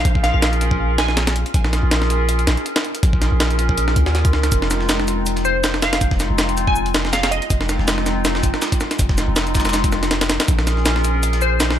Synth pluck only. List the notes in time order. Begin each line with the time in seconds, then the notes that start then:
0.24 F5
0.34 F5
0.98 G#5
5.45 C5
5.82 F5
6.67 G#5
7.13 F5
7.23 F5
7.31 D#5
11.42 C5